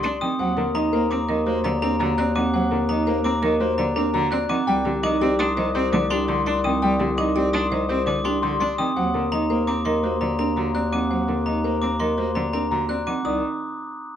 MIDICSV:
0, 0, Header, 1, 6, 480
1, 0, Start_track
1, 0, Tempo, 357143
1, 526, Time_signature, 6, 2, 24, 8
1, 19034, End_track
2, 0, Start_track
2, 0, Title_t, "Glockenspiel"
2, 0, Program_c, 0, 9
2, 45, Note_on_c, 0, 84, 78
2, 285, Note_on_c, 0, 87, 90
2, 358, Note_off_c, 0, 84, 0
2, 598, Note_off_c, 0, 87, 0
2, 1006, Note_on_c, 0, 82, 104
2, 1318, Note_off_c, 0, 82, 0
2, 1488, Note_on_c, 0, 86, 80
2, 1799, Note_off_c, 0, 86, 0
2, 2210, Note_on_c, 0, 82, 88
2, 2432, Note_off_c, 0, 82, 0
2, 2448, Note_on_c, 0, 82, 101
2, 2759, Note_off_c, 0, 82, 0
2, 2930, Note_on_c, 0, 90, 86
2, 3166, Note_on_c, 0, 86, 93
2, 3239, Note_off_c, 0, 90, 0
2, 3478, Note_off_c, 0, 86, 0
2, 3883, Note_on_c, 0, 82, 98
2, 4197, Note_off_c, 0, 82, 0
2, 4360, Note_on_c, 0, 86, 90
2, 4676, Note_off_c, 0, 86, 0
2, 5079, Note_on_c, 0, 82, 93
2, 5305, Note_off_c, 0, 82, 0
2, 5321, Note_on_c, 0, 82, 98
2, 5636, Note_off_c, 0, 82, 0
2, 5803, Note_on_c, 0, 90, 90
2, 6040, Note_on_c, 0, 86, 102
2, 6117, Note_off_c, 0, 90, 0
2, 6356, Note_off_c, 0, 86, 0
2, 6765, Note_on_c, 0, 86, 110
2, 7078, Note_off_c, 0, 86, 0
2, 7245, Note_on_c, 0, 87, 91
2, 7558, Note_off_c, 0, 87, 0
2, 7969, Note_on_c, 0, 86, 89
2, 8204, Note_on_c, 0, 84, 105
2, 8279, Note_off_c, 0, 86, 0
2, 8517, Note_off_c, 0, 84, 0
2, 8687, Note_on_c, 0, 84, 98
2, 8927, Note_on_c, 0, 87, 101
2, 8998, Note_off_c, 0, 84, 0
2, 9238, Note_off_c, 0, 87, 0
2, 9645, Note_on_c, 0, 86, 104
2, 9958, Note_off_c, 0, 86, 0
2, 10125, Note_on_c, 0, 87, 89
2, 10438, Note_off_c, 0, 87, 0
2, 10846, Note_on_c, 0, 86, 90
2, 11086, Note_on_c, 0, 84, 105
2, 11158, Note_off_c, 0, 86, 0
2, 11398, Note_off_c, 0, 84, 0
2, 11565, Note_on_c, 0, 84, 96
2, 11806, Note_on_c, 0, 87, 103
2, 11878, Note_off_c, 0, 84, 0
2, 12118, Note_off_c, 0, 87, 0
2, 12525, Note_on_c, 0, 82, 97
2, 12838, Note_off_c, 0, 82, 0
2, 13002, Note_on_c, 0, 86, 84
2, 13241, Note_on_c, 0, 84, 80
2, 13316, Note_off_c, 0, 86, 0
2, 13556, Note_off_c, 0, 84, 0
2, 13720, Note_on_c, 0, 82, 83
2, 13945, Note_off_c, 0, 82, 0
2, 13962, Note_on_c, 0, 82, 91
2, 14276, Note_off_c, 0, 82, 0
2, 14444, Note_on_c, 0, 90, 74
2, 14684, Note_on_c, 0, 86, 93
2, 14757, Note_off_c, 0, 90, 0
2, 14997, Note_off_c, 0, 86, 0
2, 15402, Note_on_c, 0, 82, 85
2, 15716, Note_off_c, 0, 82, 0
2, 15881, Note_on_c, 0, 86, 84
2, 16122, Note_on_c, 0, 84, 84
2, 16196, Note_off_c, 0, 86, 0
2, 16436, Note_off_c, 0, 84, 0
2, 16604, Note_on_c, 0, 82, 71
2, 16830, Note_off_c, 0, 82, 0
2, 16846, Note_on_c, 0, 82, 91
2, 17158, Note_off_c, 0, 82, 0
2, 17325, Note_on_c, 0, 90, 76
2, 17564, Note_on_c, 0, 86, 87
2, 17638, Note_off_c, 0, 90, 0
2, 17807, Note_on_c, 0, 87, 87
2, 17877, Note_off_c, 0, 86, 0
2, 18029, Note_off_c, 0, 87, 0
2, 19034, End_track
3, 0, Start_track
3, 0, Title_t, "Grand piano"
3, 0, Program_c, 1, 0
3, 47, Note_on_c, 1, 74, 74
3, 285, Note_on_c, 1, 79, 72
3, 358, Note_off_c, 1, 74, 0
3, 531, Note_on_c, 1, 78, 108
3, 598, Note_off_c, 1, 79, 0
3, 769, Note_on_c, 1, 70, 91
3, 840, Note_off_c, 1, 78, 0
3, 1003, Note_on_c, 1, 75, 86
3, 1079, Note_off_c, 1, 70, 0
3, 1242, Note_on_c, 1, 70, 108
3, 1317, Note_off_c, 1, 75, 0
3, 1481, Note_on_c, 1, 82, 85
3, 1556, Note_off_c, 1, 70, 0
3, 1726, Note_on_c, 1, 75, 78
3, 1796, Note_off_c, 1, 82, 0
3, 1962, Note_on_c, 1, 72, 95
3, 2038, Note_off_c, 1, 75, 0
3, 2207, Note_on_c, 1, 74, 78
3, 2277, Note_off_c, 1, 72, 0
3, 2445, Note_on_c, 1, 70, 79
3, 2518, Note_off_c, 1, 74, 0
3, 2678, Note_on_c, 1, 82, 114
3, 2757, Note_off_c, 1, 70, 0
3, 2922, Note_on_c, 1, 74, 87
3, 2995, Note_off_c, 1, 82, 0
3, 3166, Note_on_c, 1, 78, 84
3, 3236, Note_off_c, 1, 74, 0
3, 3389, Note_off_c, 1, 78, 0
3, 3409, Note_on_c, 1, 78, 113
3, 3645, Note_on_c, 1, 70, 90
3, 3719, Note_off_c, 1, 78, 0
3, 3895, Note_on_c, 1, 75, 83
3, 3958, Note_off_c, 1, 70, 0
3, 4127, Note_on_c, 1, 70, 104
3, 4201, Note_off_c, 1, 75, 0
3, 4366, Note_on_c, 1, 82, 94
3, 4438, Note_off_c, 1, 70, 0
3, 4610, Note_on_c, 1, 75, 87
3, 4678, Note_off_c, 1, 82, 0
3, 4844, Note_on_c, 1, 72, 114
3, 4920, Note_off_c, 1, 75, 0
3, 5084, Note_on_c, 1, 74, 81
3, 5157, Note_off_c, 1, 72, 0
3, 5323, Note_on_c, 1, 70, 86
3, 5398, Note_off_c, 1, 74, 0
3, 5561, Note_on_c, 1, 82, 118
3, 5637, Note_off_c, 1, 70, 0
3, 5803, Note_on_c, 1, 74, 94
3, 5876, Note_off_c, 1, 82, 0
3, 6037, Note_on_c, 1, 78, 80
3, 6117, Note_off_c, 1, 74, 0
3, 6277, Note_on_c, 1, 79, 121
3, 6355, Note_off_c, 1, 78, 0
3, 6521, Note_on_c, 1, 67, 85
3, 6595, Note_off_c, 1, 79, 0
3, 6760, Note_on_c, 1, 75, 101
3, 6836, Note_off_c, 1, 67, 0
3, 7003, Note_on_c, 1, 67, 111
3, 7076, Note_off_c, 1, 75, 0
3, 7249, Note_on_c, 1, 84, 87
3, 7317, Note_off_c, 1, 67, 0
3, 7488, Note_on_c, 1, 75, 87
3, 7559, Note_off_c, 1, 84, 0
3, 7725, Note_on_c, 1, 72, 111
3, 7799, Note_off_c, 1, 75, 0
3, 7970, Note_on_c, 1, 74, 89
3, 8038, Note_off_c, 1, 72, 0
3, 8217, Note_on_c, 1, 67, 81
3, 8279, Note_off_c, 1, 74, 0
3, 8452, Note_on_c, 1, 84, 102
3, 8522, Note_off_c, 1, 67, 0
3, 8691, Note_on_c, 1, 74, 89
3, 8760, Note_off_c, 1, 84, 0
3, 8932, Note_on_c, 1, 79, 87
3, 9000, Note_off_c, 1, 74, 0
3, 9151, Note_off_c, 1, 79, 0
3, 9171, Note_on_c, 1, 79, 113
3, 9409, Note_on_c, 1, 67, 88
3, 9480, Note_off_c, 1, 79, 0
3, 9647, Note_on_c, 1, 75, 91
3, 9719, Note_off_c, 1, 67, 0
3, 9883, Note_on_c, 1, 67, 99
3, 9958, Note_off_c, 1, 75, 0
3, 10126, Note_on_c, 1, 84, 89
3, 10197, Note_off_c, 1, 67, 0
3, 10370, Note_on_c, 1, 75, 79
3, 10438, Note_off_c, 1, 84, 0
3, 10600, Note_on_c, 1, 72, 118
3, 10680, Note_off_c, 1, 75, 0
3, 10844, Note_on_c, 1, 74, 80
3, 10916, Note_off_c, 1, 72, 0
3, 11079, Note_on_c, 1, 67, 81
3, 11157, Note_off_c, 1, 74, 0
3, 11319, Note_on_c, 1, 84, 104
3, 11395, Note_off_c, 1, 67, 0
3, 11557, Note_on_c, 1, 74, 83
3, 11636, Note_off_c, 1, 84, 0
3, 11804, Note_on_c, 1, 79, 85
3, 11875, Note_off_c, 1, 74, 0
3, 12046, Note_on_c, 1, 78, 112
3, 12117, Note_off_c, 1, 79, 0
3, 12288, Note_on_c, 1, 70, 86
3, 12358, Note_off_c, 1, 78, 0
3, 12531, Note_on_c, 1, 75, 84
3, 12599, Note_off_c, 1, 70, 0
3, 12766, Note_on_c, 1, 70, 89
3, 12839, Note_off_c, 1, 75, 0
3, 13003, Note_on_c, 1, 82, 83
3, 13078, Note_off_c, 1, 70, 0
3, 13241, Note_on_c, 1, 75, 77
3, 13317, Note_off_c, 1, 82, 0
3, 13479, Note_on_c, 1, 72, 92
3, 13556, Note_off_c, 1, 75, 0
3, 13725, Note_on_c, 1, 74, 80
3, 13796, Note_off_c, 1, 72, 0
3, 13959, Note_on_c, 1, 70, 70
3, 14038, Note_off_c, 1, 74, 0
3, 14198, Note_on_c, 1, 82, 98
3, 14275, Note_off_c, 1, 70, 0
3, 14435, Note_on_c, 1, 74, 75
3, 14515, Note_off_c, 1, 82, 0
3, 14679, Note_on_c, 1, 78, 70
3, 14754, Note_off_c, 1, 74, 0
3, 14896, Note_off_c, 1, 78, 0
3, 14916, Note_on_c, 1, 78, 90
3, 15167, Note_on_c, 1, 70, 76
3, 15235, Note_off_c, 1, 78, 0
3, 15397, Note_on_c, 1, 75, 68
3, 15478, Note_off_c, 1, 70, 0
3, 15643, Note_on_c, 1, 70, 93
3, 15715, Note_off_c, 1, 75, 0
3, 15889, Note_on_c, 1, 82, 77
3, 15957, Note_off_c, 1, 70, 0
3, 16118, Note_on_c, 1, 75, 74
3, 16199, Note_off_c, 1, 82, 0
3, 16369, Note_on_c, 1, 72, 85
3, 16435, Note_off_c, 1, 75, 0
3, 16607, Note_on_c, 1, 74, 75
3, 16679, Note_off_c, 1, 72, 0
3, 16850, Note_on_c, 1, 70, 78
3, 16918, Note_off_c, 1, 74, 0
3, 17083, Note_on_c, 1, 82, 102
3, 17159, Note_off_c, 1, 70, 0
3, 17321, Note_on_c, 1, 74, 74
3, 17397, Note_off_c, 1, 82, 0
3, 17562, Note_on_c, 1, 78, 63
3, 17636, Note_off_c, 1, 74, 0
3, 17807, Note_on_c, 1, 74, 93
3, 17876, Note_off_c, 1, 78, 0
3, 18030, Note_off_c, 1, 74, 0
3, 19034, End_track
4, 0, Start_track
4, 0, Title_t, "Marimba"
4, 0, Program_c, 2, 12
4, 289, Note_on_c, 2, 60, 90
4, 529, Note_on_c, 2, 72, 71
4, 599, Note_off_c, 2, 60, 0
4, 839, Note_off_c, 2, 72, 0
4, 1010, Note_on_c, 2, 63, 106
4, 1250, Note_on_c, 2, 72, 78
4, 1320, Note_off_c, 2, 63, 0
4, 1559, Note_off_c, 2, 72, 0
4, 1728, Note_on_c, 2, 70, 104
4, 1971, Note_on_c, 2, 66, 82
4, 2039, Note_off_c, 2, 70, 0
4, 2280, Note_off_c, 2, 66, 0
4, 2451, Note_on_c, 2, 62, 91
4, 2690, Note_on_c, 2, 66, 87
4, 2759, Note_off_c, 2, 62, 0
4, 2999, Note_off_c, 2, 66, 0
4, 3169, Note_on_c, 2, 60, 105
4, 3409, Note_on_c, 2, 72, 78
4, 3479, Note_off_c, 2, 60, 0
4, 3719, Note_off_c, 2, 72, 0
4, 3887, Note_on_c, 2, 63, 99
4, 4126, Note_on_c, 2, 72, 86
4, 4198, Note_off_c, 2, 63, 0
4, 4438, Note_off_c, 2, 72, 0
4, 4606, Note_on_c, 2, 70, 118
4, 4848, Note_on_c, 2, 66, 78
4, 4918, Note_off_c, 2, 70, 0
4, 5159, Note_off_c, 2, 66, 0
4, 5323, Note_on_c, 2, 62, 102
4, 5564, Note_on_c, 2, 66, 89
4, 5637, Note_off_c, 2, 62, 0
4, 5877, Note_off_c, 2, 66, 0
4, 6044, Note_on_c, 2, 60, 110
4, 6286, Note_on_c, 2, 74, 88
4, 6357, Note_off_c, 2, 60, 0
4, 6598, Note_off_c, 2, 74, 0
4, 6769, Note_on_c, 2, 63, 114
4, 7009, Note_on_c, 2, 74, 91
4, 7079, Note_off_c, 2, 63, 0
4, 7319, Note_off_c, 2, 74, 0
4, 7489, Note_on_c, 2, 72, 101
4, 7728, Note_on_c, 2, 67, 90
4, 7799, Note_off_c, 2, 72, 0
4, 8038, Note_off_c, 2, 67, 0
4, 8208, Note_on_c, 2, 62, 104
4, 8447, Note_on_c, 2, 67, 88
4, 8519, Note_off_c, 2, 62, 0
4, 8758, Note_off_c, 2, 67, 0
4, 8930, Note_on_c, 2, 60, 108
4, 9170, Note_on_c, 2, 74, 87
4, 9239, Note_off_c, 2, 60, 0
4, 9479, Note_off_c, 2, 74, 0
4, 9651, Note_on_c, 2, 63, 105
4, 9888, Note_on_c, 2, 74, 96
4, 9960, Note_off_c, 2, 63, 0
4, 10199, Note_off_c, 2, 74, 0
4, 10373, Note_on_c, 2, 72, 100
4, 10611, Note_on_c, 2, 67, 89
4, 10680, Note_off_c, 2, 72, 0
4, 10920, Note_off_c, 2, 67, 0
4, 11093, Note_on_c, 2, 62, 107
4, 11331, Note_on_c, 2, 67, 94
4, 11400, Note_off_c, 2, 62, 0
4, 11640, Note_off_c, 2, 67, 0
4, 11812, Note_on_c, 2, 60, 94
4, 12050, Note_on_c, 2, 72, 75
4, 12120, Note_off_c, 2, 60, 0
4, 12359, Note_off_c, 2, 72, 0
4, 12529, Note_on_c, 2, 63, 93
4, 12770, Note_on_c, 2, 72, 84
4, 12839, Note_off_c, 2, 63, 0
4, 13079, Note_off_c, 2, 72, 0
4, 13247, Note_on_c, 2, 70, 104
4, 13489, Note_on_c, 2, 66, 80
4, 13558, Note_off_c, 2, 70, 0
4, 13799, Note_off_c, 2, 66, 0
4, 13966, Note_on_c, 2, 62, 102
4, 14207, Note_on_c, 2, 66, 79
4, 14278, Note_off_c, 2, 62, 0
4, 14518, Note_off_c, 2, 66, 0
4, 14688, Note_on_c, 2, 60, 98
4, 14929, Note_on_c, 2, 72, 73
4, 14999, Note_off_c, 2, 60, 0
4, 15239, Note_off_c, 2, 72, 0
4, 15409, Note_on_c, 2, 63, 80
4, 15651, Note_on_c, 2, 72, 71
4, 15719, Note_off_c, 2, 63, 0
4, 15960, Note_off_c, 2, 72, 0
4, 16128, Note_on_c, 2, 70, 93
4, 16368, Note_on_c, 2, 66, 69
4, 16439, Note_off_c, 2, 70, 0
4, 16679, Note_off_c, 2, 66, 0
4, 16848, Note_on_c, 2, 62, 84
4, 17091, Note_on_c, 2, 66, 78
4, 17158, Note_off_c, 2, 62, 0
4, 17400, Note_off_c, 2, 66, 0
4, 17567, Note_on_c, 2, 60, 86
4, 17811, Note_on_c, 2, 63, 77
4, 17878, Note_off_c, 2, 60, 0
4, 18032, Note_off_c, 2, 63, 0
4, 19034, End_track
5, 0, Start_track
5, 0, Title_t, "Cello"
5, 0, Program_c, 3, 42
5, 42, Note_on_c, 3, 62, 75
5, 224, Note_off_c, 3, 62, 0
5, 285, Note_on_c, 3, 51, 79
5, 465, Note_off_c, 3, 51, 0
5, 523, Note_on_c, 3, 54, 99
5, 704, Note_off_c, 3, 54, 0
5, 764, Note_on_c, 3, 50, 74
5, 944, Note_off_c, 3, 50, 0
5, 1002, Note_on_c, 3, 51, 82
5, 1184, Note_off_c, 3, 51, 0
5, 1244, Note_on_c, 3, 58, 97
5, 1425, Note_off_c, 3, 58, 0
5, 1486, Note_on_c, 3, 60, 83
5, 1666, Note_off_c, 3, 60, 0
5, 1729, Note_on_c, 3, 51, 87
5, 1908, Note_off_c, 3, 51, 0
5, 1963, Note_on_c, 3, 58, 111
5, 2144, Note_off_c, 3, 58, 0
5, 2206, Note_on_c, 3, 50, 83
5, 2386, Note_off_c, 3, 50, 0
5, 2447, Note_on_c, 3, 60, 93
5, 2626, Note_off_c, 3, 60, 0
5, 2689, Note_on_c, 3, 50, 106
5, 2868, Note_off_c, 3, 50, 0
5, 2928, Note_on_c, 3, 60, 88
5, 3107, Note_off_c, 3, 60, 0
5, 3166, Note_on_c, 3, 51, 80
5, 3346, Note_off_c, 3, 51, 0
5, 3402, Note_on_c, 3, 54, 91
5, 3584, Note_off_c, 3, 54, 0
5, 3643, Note_on_c, 3, 50, 71
5, 3824, Note_off_c, 3, 50, 0
5, 3884, Note_on_c, 3, 51, 88
5, 4065, Note_off_c, 3, 51, 0
5, 4117, Note_on_c, 3, 58, 103
5, 4301, Note_off_c, 3, 58, 0
5, 4360, Note_on_c, 3, 60, 91
5, 4542, Note_off_c, 3, 60, 0
5, 4597, Note_on_c, 3, 51, 97
5, 4780, Note_off_c, 3, 51, 0
5, 4840, Note_on_c, 3, 58, 101
5, 5022, Note_off_c, 3, 58, 0
5, 5082, Note_on_c, 3, 50, 90
5, 5264, Note_off_c, 3, 50, 0
5, 5321, Note_on_c, 3, 60, 91
5, 5503, Note_off_c, 3, 60, 0
5, 5559, Note_on_c, 3, 50, 109
5, 5742, Note_off_c, 3, 50, 0
5, 5800, Note_on_c, 3, 60, 87
5, 5983, Note_off_c, 3, 60, 0
5, 6038, Note_on_c, 3, 51, 90
5, 6221, Note_off_c, 3, 51, 0
5, 6281, Note_on_c, 3, 55, 100
5, 6463, Note_off_c, 3, 55, 0
5, 6519, Note_on_c, 3, 50, 87
5, 6701, Note_off_c, 3, 50, 0
5, 6759, Note_on_c, 3, 51, 103
5, 6941, Note_off_c, 3, 51, 0
5, 7004, Note_on_c, 3, 60, 112
5, 7185, Note_off_c, 3, 60, 0
5, 7244, Note_on_c, 3, 62, 86
5, 7425, Note_off_c, 3, 62, 0
5, 7480, Note_on_c, 3, 51, 96
5, 7662, Note_off_c, 3, 51, 0
5, 7724, Note_on_c, 3, 60, 117
5, 7904, Note_off_c, 3, 60, 0
5, 7963, Note_on_c, 3, 50, 91
5, 8144, Note_off_c, 3, 50, 0
5, 8205, Note_on_c, 3, 62, 90
5, 8385, Note_off_c, 3, 62, 0
5, 8443, Note_on_c, 3, 50, 99
5, 8624, Note_off_c, 3, 50, 0
5, 8685, Note_on_c, 3, 62, 85
5, 8866, Note_off_c, 3, 62, 0
5, 8929, Note_on_c, 3, 51, 84
5, 9108, Note_off_c, 3, 51, 0
5, 9163, Note_on_c, 3, 55, 107
5, 9344, Note_off_c, 3, 55, 0
5, 9403, Note_on_c, 3, 50, 84
5, 9584, Note_off_c, 3, 50, 0
5, 9644, Note_on_c, 3, 51, 83
5, 9825, Note_off_c, 3, 51, 0
5, 9886, Note_on_c, 3, 60, 108
5, 10066, Note_off_c, 3, 60, 0
5, 10125, Note_on_c, 3, 62, 87
5, 10306, Note_off_c, 3, 62, 0
5, 10364, Note_on_c, 3, 51, 87
5, 10545, Note_off_c, 3, 51, 0
5, 10604, Note_on_c, 3, 60, 105
5, 10785, Note_off_c, 3, 60, 0
5, 10839, Note_on_c, 3, 50, 84
5, 11022, Note_off_c, 3, 50, 0
5, 11078, Note_on_c, 3, 62, 80
5, 11261, Note_off_c, 3, 62, 0
5, 11320, Note_on_c, 3, 50, 104
5, 11502, Note_off_c, 3, 50, 0
5, 11560, Note_on_c, 3, 62, 85
5, 11742, Note_off_c, 3, 62, 0
5, 11801, Note_on_c, 3, 51, 89
5, 11983, Note_off_c, 3, 51, 0
5, 12043, Note_on_c, 3, 54, 90
5, 12224, Note_off_c, 3, 54, 0
5, 12286, Note_on_c, 3, 50, 75
5, 12466, Note_off_c, 3, 50, 0
5, 12524, Note_on_c, 3, 51, 81
5, 12705, Note_off_c, 3, 51, 0
5, 12766, Note_on_c, 3, 58, 93
5, 12946, Note_off_c, 3, 58, 0
5, 13001, Note_on_c, 3, 60, 86
5, 13183, Note_off_c, 3, 60, 0
5, 13238, Note_on_c, 3, 51, 87
5, 13421, Note_off_c, 3, 51, 0
5, 13480, Note_on_c, 3, 58, 91
5, 13662, Note_off_c, 3, 58, 0
5, 13721, Note_on_c, 3, 50, 80
5, 13903, Note_off_c, 3, 50, 0
5, 13966, Note_on_c, 3, 60, 76
5, 14146, Note_off_c, 3, 60, 0
5, 14199, Note_on_c, 3, 50, 92
5, 14382, Note_off_c, 3, 50, 0
5, 14443, Note_on_c, 3, 60, 70
5, 14624, Note_off_c, 3, 60, 0
5, 14681, Note_on_c, 3, 51, 81
5, 14863, Note_off_c, 3, 51, 0
5, 14924, Note_on_c, 3, 54, 89
5, 15104, Note_off_c, 3, 54, 0
5, 15164, Note_on_c, 3, 50, 67
5, 15344, Note_off_c, 3, 50, 0
5, 15400, Note_on_c, 3, 51, 76
5, 15582, Note_off_c, 3, 51, 0
5, 15644, Note_on_c, 3, 58, 87
5, 15825, Note_off_c, 3, 58, 0
5, 15887, Note_on_c, 3, 60, 78
5, 16066, Note_off_c, 3, 60, 0
5, 16122, Note_on_c, 3, 51, 81
5, 16304, Note_off_c, 3, 51, 0
5, 16360, Note_on_c, 3, 58, 98
5, 16542, Note_off_c, 3, 58, 0
5, 16604, Note_on_c, 3, 50, 78
5, 16785, Note_off_c, 3, 50, 0
5, 16842, Note_on_c, 3, 60, 80
5, 17023, Note_off_c, 3, 60, 0
5, 17087, Note_on_c, 3, 50, 84
5, 17266, Note_off_c, 3, 50, 0
5, 17321, Note_on_c, 3, 60, 77
5, 17503, Note_off_c, 3, 60, 0
5, 17562, Note_on_c, 3, 51, 77
5, 17743, Note_off_c, 3, 51, 0
5, 17800, Note_on_c, 3, 51, 78
5, 18026, Note_off_c, 3, 51, 0
5, 19034, End_track
6, 0, Start_track
6, 0, Title_t, "Bass clarinet"
6, 0, Program_c, 4, 71
6, 0, Note_on_c, 4, 36, 76
6, 376, Note_off_c, 4, 36, 0
6, 526, Note_on_c, 4, 39, 88
6, 6136, Note_off_c, 4, 39, 0
6, 6283, Note_on_c, 4, 36, 91
6, 11895, Note_off_c, 4, 36, 0
6, 12044, Note_on_c, 4, 39, 91
6, 17655, Note_off_c, 4, 39, 0
6, 17804, Note_on_c, 4, 36, 75
6, 18028, Note_off_c, 4, 36, 0
6, 19034, End_track
0, 0, End_of_file